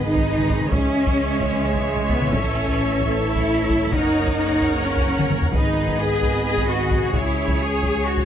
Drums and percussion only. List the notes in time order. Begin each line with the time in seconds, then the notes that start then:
0.16 taiko
0.38 taiko mid
0.50 taiko
0.61 taiko mid
0.72 taiko
1.07 taiko
1.41 taiko
1.52 taiko mid
1.75 taiko
1.97 taiko mid
2.10 taiko
2.21 taiko mid
2.33 taiko
2.67 taiko
3.01 taiko
3.35 taiko
3.70 taiko
3.92 taiko
4.27 taiko
4.62 taiko
4.96 taiko
5.19 taiko mid
5.30 taiko mid
5.42 taiko low
5.52 taiko
5.88 taiko
6.22 taiko
6.57 taiko
6.91 taiko
7.14 taiko
7.48 taiko
7.83 taiko
8.18 taiko